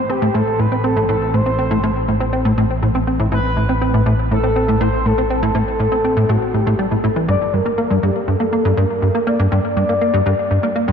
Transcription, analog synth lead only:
Already playing: C5
0.10 G4
0.35 A4
0.59 B4
0.84 A4
1.09 A4
1.34 C5
3.32 B4
4.32 A4
4.81 C5
5.06 A4
5.31 A4
6.29 F#4
6.54 G4
6.79 A4
7.28 D5
7.53 A#4
8.03 G4
8.27 A4
8.77 A#4
9.27 D5

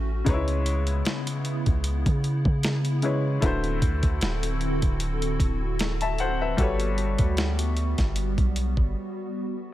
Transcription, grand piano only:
Already playing: A2 A3 F#4 B4 C#5
0.24 C#3 G#3 D#4
0.29 B4 C#5
0.34 E4
3.02 C#3 G#3 E4 B4 C#5
3.41 D3 A3 E4 F#4
3.45 B4 C5
6.02 E5 A5
6.20 C5 F#5
6.41 B4 E5
6.57 G3 F#4 A4
6.61 B4 C#5

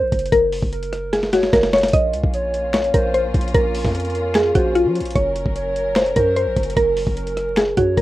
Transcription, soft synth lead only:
Already playing: C5
0.72 A#4
1.33 C#5
2.34 C#5
2.94 C5
3.94 A#4
4.55 C5
5.56 C#5
6.16 C5
7.16 A#4
7.78 C#5

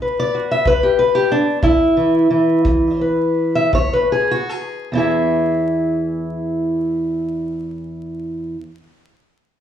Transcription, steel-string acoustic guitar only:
Already playing: D#4
0.02 B4
0.20 D5
0.35 F#4
0.51 E5
0.66 E2 B4
0.83 G4
0.99 B4
1.15 G4
1.32 D4
1.62 E3 E4
1.97 E3
2.30 E3
2.65 E2
3.01 B4
3.55 E5
3.73 E3 C#5
3.93 B4
4.12 G#4
4.31 F#4
4.49 G#4
4.92 E2 E3 E4
4.97 G#4 E5

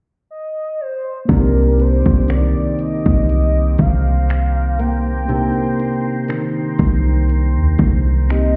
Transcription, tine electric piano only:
1.25 A#3 C4
1.31 D#4 G4
5.26 A#3 D4
5.31 D#4 A#4
8.28 A#3 C4 D#4 G4

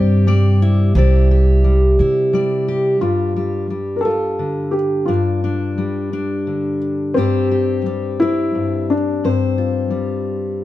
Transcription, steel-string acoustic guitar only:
Already playing: C3 G3 C4 G4 D5
0.27 G3 D5
0.62 E4
0.96 C3 E4 G4 D5
1.31 G4
1.64 G3
2.00 E4
2.33 G3 D5
2.68 G4
3.01 G2 G3
3.36 G3
3.70 G3
4.05 F4
4.39 D3
5.08 G2 D4
5.44 D4
5.78 G3
6.13 D4
6.47 D3
7.16 G2 G3 C4 G4 C5
7.51 G4
7.86 G3
8.22 C4
8.55 G2
9.24 G2 C5
9.58 F4
9.90 G3

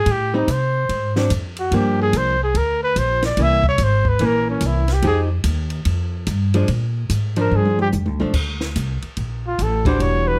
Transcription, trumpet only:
Already playing: G#4
0.11 G4
0.36 D#4
0.51 C5
1.59 F#4
1.75 G4
2.02 G#4
2.17 C5
2.43 G#4
2.57 A#4
2.84 B4
2.98 C5
3.26 D5
3.42 E5
3.68 C#5
3.83 C5
4.09 B4
4.25 A#4
4.51 C#4
4.66 E4
4.93 G4
5.07 G#4
7.40 A#4
7.56 G#4
7.82 G4
9.47 F4
9.63 A4
9.87 C5
10.01 C#5
10.28 B4

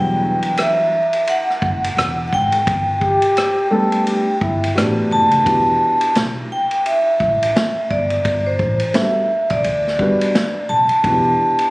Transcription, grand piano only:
Already playing: E3 F#3 G3 B3 D4
3.71 G3 A3 B3 D4 G4
4.75 A3 B3 D4 F#4 G4
5.45 B3 D4 E4 F#4 G4
8.94 G3 B3 D4 F#4 A4
9.98 G3 B3 D4 F#4 B4
11.03 B3 D4 E4 F#4
11.12 G4

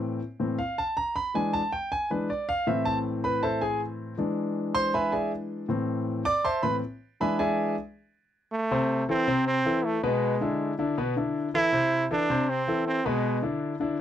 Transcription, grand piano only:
Already playing: A2 E3 C4
0.40 A2 E3 C4
0.59 F5
0.78 A5
0.97 A#5
1.16 B5
1.34 E3 G#3 D4 G#5
1.53 A5
1.72 G5
1.92 G#5
2.10 E3 G#3 D4 B4
2.30 D5
2.49 F5
2.67 A2 E3 C4 E5
2.85 A5
3.24 B4 B5
3.43 A4 C5 E5 A5
3.61 G#4 G#5
4.18 E3 G#3 D4
4.75 C5 C6
4.94 B4 E5 G#5 B5
5.12 G#4 D5 E5 G#5
5.69 A2 E3 C4
6.25 D5 D6
6.45 C5 E5 A5 C6
6.63 A2 E3 C4 B4 B5
7.20 E3 G#3 D4 B4 E5 G#5 B5
7.39 G#4 D5 E5 G#5
8.71 C3 C4 C5
9.08 E3 E4 A4
9.28 C3 C4 C5
9.65 E3 E4 A4
10.03 B2 B3 B4
10.41 D3 D4 E4
10.79 D3 D4 E4
10.98 B2 B3 B4
11.17 D3 D4 E4
11.54 E3 E4 A4
11.72 C3 C4 C5
12.11 E3 E4 A4
12.30 C3 C4 C5
12.67 E3 E4 A4
13.05 B2 B3 B4
13.42 D3 D4 E4
13.80 D3 D4 E4

